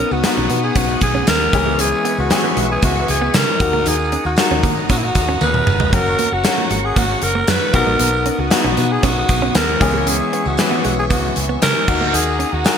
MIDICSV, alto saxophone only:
0, 0, Header, 1, 2, 480
1, 0, Start_track
1, 0, Tempo, 517241
1, 1663, Time_signature, 4, 2, 24, 8
1, 11859, End_track
2, 0, Start_track
2, 0, Title_t, "Alto saxophone"
2, 0, Program_c, 0, 65
2, 0, Note_on_c, 0, 70, 96
2, 115, Note_on_c, 0, 66, 87
2, 129, Note_off_c, 0, 70, 0
2, 229, Note_off_c, 0, 66, 0
2, 235, Note_on_c, 0, 66, 85
2, 592, Note_on_c, 0, 68, 87
2, 606, Note_off_c, 0, 66, 0
2, 711, Note_on_c, 0, 66, 91
2, 725, Note_off_c, 0, 68, 0
2, 947, Note_off_c, 0, 66, 0
2, 954, Note_on_c, 0, 68, 85
2, 1172, Note_off_c, 0, 68, 0
2, 1195, Note_on_c, 0, 70, 100
2, 1673, Note_on_c, 0, 68, 93
2, 1687, Note_off_c, 0, 70, 0
2, 2028, Note_off_c, 0, 68, 0
2, 2034, Note_on_c, 0, 66, 84
2, 2140, Note_off_c, 0, 66, 0
2, 2157, Note_on_c, 0, 66, 85
2, 2485, Note_off_c, 0, 66, 0
2, 2522, Note_on_c, 0, 68, 87
2, 2624, Note_off_c, 0, 68, 0
2, 2639, Note_on_c, 0, 66, 90
2, 2855, Note_off_c, 0, 66, 0
2, 2877, Note_on_c, 0, 68, 86
2, 3117, Note_on_c, 0, 70, 100
2, 3131, Note_off_c, 0, 68, 0
2, 3601, Note_on_c, 0, 68, 92
2, 3615, Note_off_c, 0, 70, 0
2, 3949, Note_off_c, 0, 68, 0
2, 3954, Note_on_c, 0, 66, 73
2, 4274, Note_off_c, 0, 66, 0
2, 4554, Note_on_c, 0, 66, 87
2, 4623, Note_on_c, 0, 64, 77
2, 4637, Note_off_c, 0, 66, 0
2, 4684, Note_on_c, 0, 66, 94
2, 4698, Note_off_c, 0, 64, 0
2, 5028, Note_off_c, 0, 66, 0
2, 5040, Note_on_c, 0, 71, 100
2, 5518, Note_on_c, 0, 70, 99
2, 5532, Note_off_c, 0, 71, 0
2, 5876, Note_on_c, 0, 66, 90
2, 5890, Note_off_c, 0, 70, 0
2, 5990, Note_off_c, 0, 66, 0
2, 5999, Note_on_c, 0, 66, 91
2, 6355, Note_on_c, 0, 68, 90
2, 6369, Note_off_c, 0, 66, 0
2, 6469, Note_off_c, 0, 68, 0
2, 6475, Note_on_c, 0, 66, 96
2, 6712, Note_on_c, 0, 70, 93
2, 6726, Note_off_c, 0, 66, 0
2, 6954, Note_on_c, 0, 71, 99
2, 6968, Note_off_c, 0, 70, 0
2, 7188, Note_off_c, 0, 71, 0
2, 7193, Note_on_c, 0, 70, 107
2, 7793, Note_on_c, 0, 66, 89
2, 7807, Note_off_c, 0, 70, 0
2, 7908, Note_off_c, 0, 66, 0
2, 7914, Note_on_c, 0, 66, 84
2, 7977, Note_on_c, 0, 64, 67
2, 7990, Note_off_c, 0, 66, 0
2, 8047, Note_on_c, 0, 66, 90
2, 8061, Note_off_c, 0, 64, 0
2, 8276, Note_on_c, 0, 68, 89
2, 8290, Note_off_c, 0, 66, 0
2, 8395, Note_on_c, 0, 66, 95
2, 8409, Note_off_c, 0, 68, 0
2, 8869, Note_off_c, 0, 66, 0
2, 8877, Note_on_c, 0, 70, 94
2, 9356, Note_on_c, 0, 68, 91
2, 9369, Note_off_c, 0, 70, 0
2, 9720, Note_on_c, 0, 66, 81
2, 9734, Note_off_c, 0, 68, 0
2, 9831, Note_off_c, 0, 66, 0
2, 9836, Note_on_c, 0, 66, 83
2, 10165, Note_off_c, 0, 66, 0
2, 10200, Note_on_c, 0, 68, 81
2, 10250, Note_off_c, 0, 68, 0
2, 10321, Note_on_c, 0, 66, 76
2, 10536, Note_off_c, 0, 66, 0
2, 10790, Note_on_c, 0, 70, 113
2, 11269, Note_on_c, 0, 68, 99
2, 11283, Note_off_c, 0, 70, 0
2, 11629, Note_on_c, 0, 66, 90
2, 11643, Note_off_c, 0, 68, 0
2, 11740, Note_off_c, 0, 66, 0
2, 11745, Note_on_c, 0, 66, 86
2, 11853, Note_off_c, 0, 66, 0
2, 11859, End_track
0, 0, End_of_file